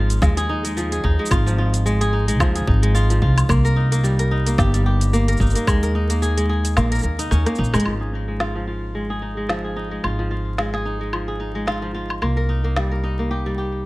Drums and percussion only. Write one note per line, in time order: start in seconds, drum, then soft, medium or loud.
0.10 closed hi-hat medium
0.10 cabasa medium
0.22 kick loud
0.22 snare medium
0.22 cabasa medium
0.37 closed hi-hat soft
0.37 cabasa soft
0.65 closed hi-hat medium
0.65 cabasa medium
0.77 cabasa medium
0.92 closed hi-hat soft
0.92 cabasa soft
1.04 kick medium
1.26 cabasa medium
1.31 kick loud
1.31 closed hi-hat medium
1.31 cabasa medium
1.31 low woodblock medium
1.47 cabasa soft
1.74 closed hi-hat medium
1.74 cabasa medium
1.87 cabasa medium
2.01 closed hi-hat soft
2.01 cabasa soft
2.28 closed hi-hat medium
2.28 cabasa medium
2.40 kick loud
2.40 snare medium
2.40 cabasa soft
2.40 low woodblock medium
2.55 closed hi-hat soft
2.55 cabasa soft
2.67 kick loud
2.83 closed hi-hat medium
2.96 cabasa medium
3.10 closed hi-hat soft
3.10 cabasa soft
3.22 kick medium
3.38 closed hi-hat medium
3.38 cabasa medium
3.38 low woodblock medium
3.49 kick loud
3.49 cabasa medium
3.49 low woodblock medium
3.65 cabasa soft
3.92 closed hi-hat medium
3.92 cabasa medium
4.05 cabasa medium
4.19 closed hi-hat soft
4.19 cabasa soft
4.46 closed hi-hat medium
4.46 cabasa medium
4.58 kick loud
4.58 snare medium
4.58 cabasa soft
4.74 closed hi-hat soft
4.74 cabasa soft
5.01 closed hi-hat medium
5.01 cabasa medium
5.14 cabasa soft
5.28 closed hi-hat soft
5.28 cabasa soft
5.32 cabasa soft
5.37 kick medium
5.37 cabasa soft
5.41 cabasa soft
5.46 cabasa soft
5.50 cabasa soft
5.55 closed hi-hat medium
5.55 cabasa medium
5.67 kick loud
5.67 cabasa medium
5.67 low woodblock medium
5.83 closed hi-hat soft
5.83 cabasa soft
6.10 closed hi-hat medium
6.10 cabasa medium
6.23 cabasa medium
6.38 closed hi-hat soft
6.38 cabasa soft
6.65 closed hi-hat medium
6.65 cabasa medium
6.77 snare medium
6.77 cabasa medium
6.77 low woodblock medium
6.92 closed hi-hat soft
6.92 cabasa soft
6.95 cabasa soft
6.99 cabasa soft
7.01 cabasa soft
7.03 cabasa soft
7.19 closed hi-hat medium
7.19 cabasa medium
7.31 cross-stick medium
7.31 cabasa medium
7.46 cross-stick medium
7.46 closed hi-hat soft
7.46 cabasa soft
7.55 cabasa soft
7.64 cabasa soft
7.74 cross-stick medium
7.74 cabasa medium
7.74 low woodblock medium
7.80 closed hi-hat medium
7.86 low woodblock medium
8.40 snare medium
9.49 snare medium
10.04 low woodblock medium
10.58 snare medium
10.74 snare soft
11.13 low woodblock medium
11.67 snare medium
12.10 low woodblock medium
12.22 low woodblock medium
12.76 snare medium